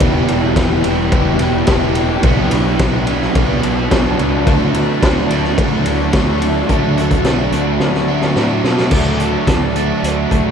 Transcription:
Already playing: E4 B4 D5 G5
0.00 E1 E2 B2 E3 G3 B3 E4 G4, kick, ride
0.28 E1, ride
0.56 E1 E3 G3 B3 E4, kick, snare, ride
0.60 G4
0.83 E1 B2 E3 B3 E4 G4, ride
0.87 E2
1.12 E1 E3 G3 B3 E4 G4, kick, ride
1.39 E1 E4 G4, ride
1.43 E3 G3
1.67 E1 E3 G3 B3 E4, kick, snare, ride
1.71 G4
1.95 E3 G3 E4 G4, ride
2.23 B1 B2 F#3 B3 D4 F#4 B4 D5 A5, kick, ride
2.51 B1, ride
2.79 B1 F#3 B3 D4 F#4, kick, snare, ride
3.07 B2 F#3 B3 D4 F#4, ride
3.11 B3
3.22 snare
3.35 B1 B2 F#3 B3 D4 F#4, kick, ride
3.63 B1 B3 D4 F#4, ride
3.91 B1 F#3 B3 D4 F#4, kick, snare, ride
4.19 C#2 B3 D4 F#4, ride
4.47 D2 D3 F#3 A3 D4 F#4 D5 E5, kick, ride
4.74 D2, ride
5.02 D2 D3 F#3 A3 D4 F#4, kick, snare, ride
5.28 D2 D3 A3 D4 F#4, ride
5.33 A3
5.44 snare
5.58 D2 D3 F#3 A3 D4 F#4, kick, ride
5.86 D2 A3 D4 F#4, ride
6.13 D2 D3 F#3 A3 D4 F#4, kick, snare, ride
6.42 A3 D4 F#4, ride
6.67 D2 D3 F#3 A3 D4 F#4 D5 E5 A5, kick, closed hi-hat
6.72 F#4
6.97 A3 D4 F#4, closed hi-hat
7.11 kick, closed hi-hat
7.24 B1 F#3 A3 D4, snare, closed hi-hat
7.29 F#4
7.52 D2 D3 A3 D4 F#4, closed hi-hat
7.56 A3
7.79 D2 F#3 A3 D4 F#4, snare
7.94 snare
8.08 A3 D4 F#4
8.21 snare
8.36 A2 F#3 A3 D4 F#4, snare
8.62 B2 A3 D4 F#4, snare
8.78 snare
8.91 D2 D3 F#3 A3 D4 F#4 D5 E5 A5, kick, crash
9.20 D3 A3 D4, closed hi-hat
9.47 D2 D3 A3 D4, kick, snare, closed hi-hat
9.76 D3 F#3 A3 D4 F#4, closed hi-hat
10.03 D2 D3 A3 D4, closed hi-hat
10.31 D2 D3 A3 D4 F#4, kick, closed hi-hat

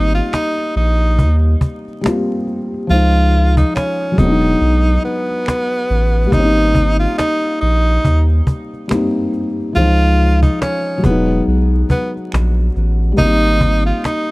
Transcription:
Already playing: G#1 G3 A#3 C4 D#4
0.14 F4
0.33 D#4, finger snap, cajon slap
0.58 cajon slap
0.76 A#1 D#4, cajon slap
1.02 cajon slap
1.19 D#2, cajon bass
1.61 cajon bass
1.88 cajon slap
2.01 G3 A#3, finger snap
2.06 C4 F4, cajon slap
2.47 cajon slap
2.74 cajon slap
2.87 C#2 F3 G#3 F4
2.92 D#4 C5
3.37 cajon slap
3.57 D#4, cajon bass
3.75 C#4, finger snap, cajon slap
4.01 cajon slap
4.12 F#3 G#3
4.18 E1 B3 D#4, cajon bass
4.25 D4
4.31 D#4
4.45 cajon slap
4.61 B1, cajon slap
5.05 B3, cajon slap
5.31 cajon slap
5.46 finger snap, cajon slap
5.90 A1, cajon slap
6.17 cajon slap
6.26 G3
6.30 G#1 A#3 D#4, cajon bass
6.34 C4
6.39 C#4
6.45 D#4
6.75 cajon bass
7.00 F4, cajon slap
7.18 D#4, finger snap, cajon slap
7.44 cajon slap
7.61 A#1 D#4, cajon slap
8.05 D#2, cajon bass
8.47 cajon bass
8.74 cajon slap
8.88 G3 A#3, finger snap, cajon slap
8.92 C4 D#4
9.33 cajon slap
9.60 cajon slap
9.73 C#2 E3 G#3 F4, cajon slap
9.77 F3 D#4 C5
10.22 cajon slap
10.43 D#4, cajon bass
10.61 C#4, finger snap, cajon slap
10.98 F#3
11.02 E1 G#3 B3, cajon bass
11.06 B3
11.10 D#4
11.30 cajon slap
11.47 B1, cajon slap
11.74 cajon slap
11.90 B3, cajon bass
12.17 cajon slap
12.32 A#1, finger snap, cajon slap
12.57 cajon slap
12.76 A1, cajon slap
13.03 cajon slap
13.12 G3
13.16 G#1 A#3 D#4, cajon bass
13.20 C4
13.25 D#4
13.61 cajon bass
13.86 F4, cajon slap
14.04 D#4, finger snap, cajon slap

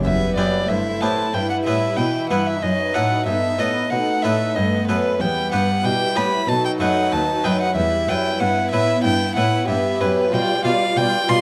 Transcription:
0.03 E2 G3 B3 B4 E5
0.37 F#2 B3 E4 G4 D5
0.68 G2 A3 E4 C5 E5
1.00 A2 B3 E4 G4 A5
1.33 G2 G3 B4 G5
1.50 F#5
1.65 A2 B3 E4 B4 E5
1.96 B2 E3 E4 B4 G5
2.30 G2 B3 E4 B4 F#5
2.47 E5
2.61 F#2 F#3 D#4 B4 D#5
2.94 A2 B3 A4 B4 F#5
3.26 G2 B3 A4 E5
3.59 A2 B3 A4 B4 D#5
3.90 B2 A3 D#4 A4 F#5
4.22 A2 B3 A4 B4 E5
4.55 G2 B3 B4 D#5
4.87 F#2 B3 A4 B4
5.19 E2 G3 B3 B4 G5
5.52 G2 B3 G4 B4 F#5
5.84 B2 E4 B4 G5
6.16 A2 B3 G4 B4 B5
6.47 B2 F#3 D#4 A4 A5
6.65 G5
6.80 F#2 A3 D#4 B4 F#5
7.12 D#2 B4 A5
7.44 F#2 A3 D#4 B4 G5
7.61 F#5
7.75 E2 G3 E4 B4 E5
8.08 F#2 E4 B4 G5
8.40 G2 B3 F#5
8.71 A2 E4 B4 E5
9.03 G2 E4 G5
9.36 A2 E4 B4 F#5
9.68 G2 B3 G4 B4 E5
10.00 F#2 E4 B4
10.32 B2 G3 F4 D5 G5
10.64 B2 G3 F4 D5 F5
10.95 B2 G3 F4 D5 G5
11.27 B2 G3 F4 D5 C6

